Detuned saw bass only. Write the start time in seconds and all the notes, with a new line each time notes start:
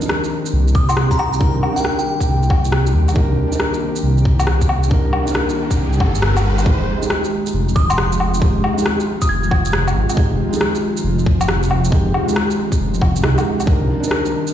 0.53 C2
0.89 C2
1.55 C2
2.29 C2
2.65 C2
2.94 D#2
3.30 C2
4.03 C2
4.40 C2
5.05 C2
5.78 C2
6.00 G1
6.44 G1
6.80 F1
7.54 F1
7.90 F1
8.56 F1
9.29 F1
9.66 F1
9.95 G#1
10.31 F1
11.04 F1
11.40 F1
12.05 F1
12.79 F1
13.16 F1
13.23 C2
13.81 C2